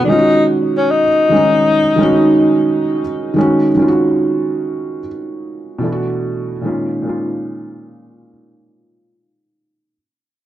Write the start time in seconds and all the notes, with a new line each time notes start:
0.04 D#3 G#3 D4
0.09 C#4 D#4 F4
0.19 F#4
0.77 C#4
0.91 D#4
1.29 D#3 G#3
1.34 C#4 D#4
1.96 D#3 G#3
2.00 C#4 F#4
3.34 D#3 G#3
3.38 C#4 F#4
3.75 D#3 G#3
3.79 C#4 F4
3.88 F#4
5.78 B2 E3 A3
5.84 D4 E4
5.92 F#4
6.61 A#2 D#3 G#3
6.66 C#4 F4
7.02 A#2 D#3 G#3
7.07 C#4 F4